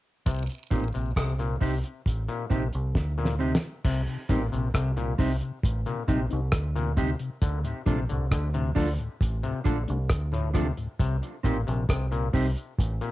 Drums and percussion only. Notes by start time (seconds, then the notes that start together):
0.27 kick, closed hi-hat, cowbell, vibraslap
0.50 closed hi-hat
0.71 kick, closed hi-hat
0.95 closed hi-hat
1.16 kick, cross-stick, closed hi-hat
1.39 closed hi-hat
1.61 kick, open hi-hat
1.83 closed hi-hat
2.06 kick, closed hi-hat
2.28 closed hi-hat
2.50 kick, closed hi-hat
2.73 closed hi-hat
2.95 kick, snare
3.25 snare
3.55 snare
3.84 kick, crash
4.08 closed hi-hat
4.29 kick, closed hi-hat
4.53 closed hi-hat
4.74 kick, cross-stick, closed hi-hat
4.97 closed hi-hat
5.19 kick, open hi-hat
5.41 closed hi-hat
5.63 kick, closed hi-hat
5.86 closed hi-hat
6.08 kick, closed hi-hat
6.30 closed hi-hat
6.52 kick, cross-stick, closed hi-hat
6.76 closed hi-hat
6.97 kick, closed hi-hat
7.20 closed hi-hat
7.42 kick, closed hi-hat
7.65 closed hi-hat
7.86 kick, closed hi-hat
8.09 closed hi-hat
8.31 kick, cross-stick, closed hi-hat
8.54 closed hi-hat
8.76 kick, open hi-hat
8.98 closed hi-hat
9.21 kick, closed hi-hat
9.44 closed hi-hat
9.66 kick, closed hi-hat
9.88 closed hi-hat
10.10 kick, cross-stick, closed hi-hat
10.34 closed hi-hat
10.55 kick, cross-stick, closed hi-hat
10.78 closed hi-hat
11.00 kick, closed hi-hat
11.23 closed hi-hat
11.44 kick, closed hi-hat
11.68 closed hi-hat
11.89 kick, cross-stick, closed hi-hat
12.12 closed hi-hat
12.34 kick, open hi-hat
12.56 closed hi-hat
12.78 kick, closed hi-hat
13.01 closed hi-hat